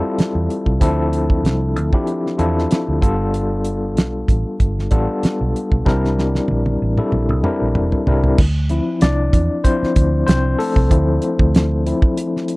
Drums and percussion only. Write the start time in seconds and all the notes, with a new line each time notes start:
0.19 snare, closed hi-hat
0.50 closed hi-hat
0.66 kick
0.81 kick, closed hi-hat
1.13 closed hi-hat
1.30 kick
1.45 snare, closed hi-hat
1.77 closed hi-hat
1.93 kick
2.07 closed hi-hat
2.27 snare
2.39 closed hi-hat
2.59 snare
2.71 snare, closed hi-hat
3.02 kick, closed hi-hat
3.34 closed hi-hat
3.65 closed hi-hat
3.97 snare, closed hi-hat
4.28 kick, closed hi-hat
4.60 kick, closed hi-hat
4.79 snare
4.91 kick, closed hi-hat
5.23 snare, closed hi-hat
5.56 closed hi-hat
5.72 kick
5.86 kick, snare
6.05 snare
6.19 snare
6.35 snare
6.48 high tom
6.66 high tom
6.98 mid tom
7.12 mid tom
7.29 mid tom
7.44 mid tom
7.75 mid tom
7.92 floor tom
8.07 floor tom
8.24 floor tom
8.38 kick, crash
8.69 closed hi-hat
9.01 snare, closed hi-hat
9.33 kick, closed hi-hat
9.65 kick, closed hi-hat
9.84 snare
9.96 kick, closed hi-hat
10.28 snare, closed hi-hat
10.60 open hi-hat
10.76 kick
10.91 kick, closed hi-hat
11.22 closed hi-hat
11.39 kick
11.55 snare, closed hi-hat
11.87 closed hi-hat
12.02 kick
12.17 closed hi-hat
12.37 snare
12.48 closed hi-hat